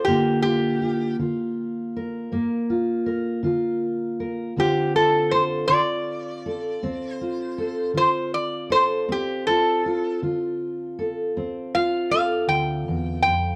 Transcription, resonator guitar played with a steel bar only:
0.05 0.41 G4 medium
0.42 1.16 G4 medium
4.60 4.95 G4 medium
4.96 5.32 A4 medium
5.31 5.67 C5 medium
5.68 7.14 D5 medium
7.14 7.91 C5 medium
7.97 8.33 C5 medium
8.34 8.70 D5 medium
8.72 9.08 C5 medium
9.12 9.46 G4 medium
9.47 10.20 A4 medium
11.75 12.10 F5 medium
12.11 12.47 F5 medium
12.49 13.21 G5 medium
13.22 13.55 G5 medium

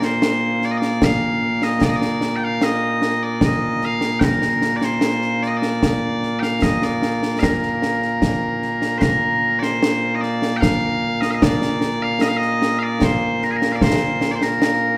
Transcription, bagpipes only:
0.00 14.97 A#2 medium
0.00 14.97 A#3 medium
0.00 0.65 C5 medium
0.65 0.71 D5 medium
0.71 0.77 D#5 medium
0.77 1.04 D5 medium
1.04 1.63 F5 medium
1.63 1.83 D#5 medium
1.83 1.89 D5 medium
1.89 1.96 D#5 medium
1.96 2.36 D5 medium
2.36 2.44 G5 medium
2.44 2.63 F5 medium
2.63 3.23 D#5 medium
3.23 3.44 D5 medium
3.44 3.85 D#5 medium
3.85 4.20 F5 loud
4.20 4.24 G5 medium
4.24 4.76 A#4 medium
4.76 4.84 D5 medium
4.84 5.43 C5 medium
5.43 5.48 D5 medium
5.48 5.57 D#5 medium
5.57 6.40 D5 medium
6.40 6.62 F5 medium
6.40 6.43 G5 medium
6.62 6.84 D#5 medium
6.84 7.39 D5 medium
7.39 7.44 F5 medium
7.44 8.98 A#4 medium
8.98 9.59 A#4 medium
8.98 9.01 C5 medium
9.59 10.15 C5 medium
9.59 9.62 D5 medium
10.15 10.21 D#5 medium
10.21 10.57 D5 medium
10.57 10.61 G5 loud
10.61 11.21 F5 loud
11.21 11.31 D#5 medium
11.31 11.43 D#5 medium
11.31 11.35 F5 medium
11.43 12.02 D5 loud
12.02 12.21 F5 loud
12.21 12.28 D#5 medium
12.28 12.37 F5 medium
12.37 12.79 D#5 loud
12.79 12.83 F5 medium
12.83 13.03 D5 medium
13.03 13.44 C5 medium
13.44 13.51 A#4 medium
13.51 13.56 G#4 medium
13.56 13.72 A#4 medium
13.72 13.82 D5 medium
13.72 13.76 F5 medium
13.82 14.31 C5 medium
14.31 14.35 D5 medium
14.35 14.43 C5 medium
14.43 14.97 A#4 medium

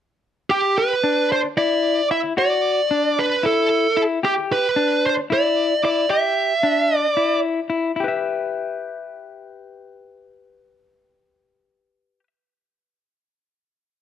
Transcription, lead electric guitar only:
0.50 0.75 G4 medium
0.78 1.27 B4 medium
1.32 1.39 C5 medium
1.58 2.07 D5 medium
2.11 2.18 E5 medium
2.38 3.20 D5 medium
3.19 3.43 B4 medium
3.46 4.01 A4 medium
4.25 4.32 G4 medium
4.52 5.06 B4 medium
5.06 5.13 C5 medium
5.33 5.81 D5 medium
5.85 6.09 D5 medium
6.11 6.98 E5 medium
6.98 7.39 D5 medium

